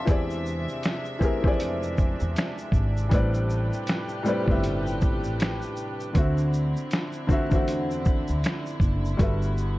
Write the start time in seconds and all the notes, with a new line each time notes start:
Already playing: C3 D4 E5 F5 A5 C6
0.05 E2 E3 G#3 C4 G4 G#4, kick, closed hi-hat, shaker
0.10 D5
0.30 shaker
0.46 shaker
0.69 shaker
0.83 finger snap, snare, closed hi-hat, shaker
1.05 shaker
1.19 E3 C4 G4, kick, shaker
1.23 G#4 A#4
1.42 F2 E3 C4 G4, kick
1.46 G#4 D5
1.60 closed hi-hat, shaker
1.83 shaker
1.98 kick, shaker
2.20 E2, shaker
2.36 finger snap, snare, closed hi-hat, shaker
2.58 shaker
2.72 G#1, kick, shaker
2.97 shaker
3.09 A1 A2 G3 C4 G4 B4, kick, closed hi-hat, shaker
3.15 D5
3.34 shaker
3.50 shaker
3.73 shaker
3.87 finger snap, snare, closed hi-hat, shaker
4.09 shaker
4.23 A2 G3 C4, shaker
4.27 B4 D5
4.46 G1 A2 G3 C4, kick
4.50 B4 E5
4.64 closed hi-hat, shaker
4.86 shaker
5.01 kick, shaker
5.23 A1, shaker
5.40 finger snap, snare, closed hi-hat, shaker
5.62 shaker
5.76 shaker
6.00 shaker
6.13 D2 D3 C4 E4 F#4, kick, closed hi-hat, shaker
6.18 E5
6.38 shaker
6.53 shaker
6.76 shaker
6.91 finger snap, snare, closed hi-hat, shaker
7.12 shaker
7.27 D3 C4 F#4, kick, shaker
7.32 E5
7.49 E2 D3 C4 F#4, kick, shaker
7.55 E5
7.68 closed hi-hat, shaker
7.91 shaker
8.05 kick, shaker
8.28 D2, shaker
8.44 finger snap, snare, closed hi-hat, shaker
8.66 shaker
8.80 F#1, kick, shaker
9.05 shaker
9.17 G1 G3 A3 B3 F#4 A4, kick, closed hi-hat, shaker
9.21 B4 E5
9.42 shaker
9.58 shaker